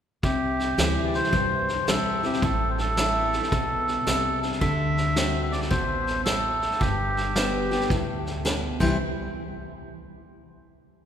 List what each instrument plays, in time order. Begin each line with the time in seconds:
0.23 upright bass C2, steel-string acoustic guitar C3, melodica G4, kick, snare
0.59 snare
0.78 upright bass D2, steel-string acoustic guitar E3 G3 C4 E4, snare, hi-hat pedal
1.04 melodica D5
1.14 melodica C5, snare
1.23 snare
1.33 upright bass C2, steel-string acoustic guitar G2, kick, snare
1.68 snare
1.87 upright bass B1, steel-string acoustic guitar E3 G3 C4 E4, melodica A4, snare, hi-hat pedal
2.23 steel-string acoustic guitar C4 E4, melodica G4, snare
2.33 snare
2.42 upright bass A1, steel-string acoustic guitar A2, melodica A4, kick, snare
2.70 melodica C5
2.78 melodica A4, snare
2.97 steel-string acoustic guitar E3 A3 C4 E4, snare, hi-hat pedal
3.33 snare
3.43 snare
3.52 upright bass B1, steel-string acoustic guitar B2, kick, snare
3.88 snare
4.07 upright bass C2, steel-string acoustic guitar C3, snare, hi-hat pedal
4.43 snare
4.52 snare
4.61 upright bass D2, steel-string acoustic guitar D3, melodica E5, kick, snare
4.97 snare
5.16 steel-string acoustic guitar D3 A3 C4 F#4, snare, hi-hat pedal
5.43 melodica E5
5.51 melodica D5, snare
5.62 snare
5.70 upright bass A1, steel-string acoustic guitar B2, melodica C5, kick, snare
6.07 snare
6.24 steel-string acoustic guitar A2, melodica A4, snare, hi-hat pedal
6.62 snare
6.72 snare
6.79 upright bass G1, steel-string acoustic guitar G2, melodica G4, kick, snare
7.17 snare
7.36 steel-string acoustic guitar D3 G3 B3 G4, snare, hi-hat pedal
7.71 steel-string acoustic guitar B3 G4, snare
7.81 snare
7.90 upright bass D2, steel-string acoustic guitar A2, kick, snare
8.26 snare
8.45 steel-string acoustic guitar B2, snare, hi-hat pedal
8.80 upright bass C2, steel-string acoustic guitar C3 E3 G3 C4 E4, melodica C5, kick, crash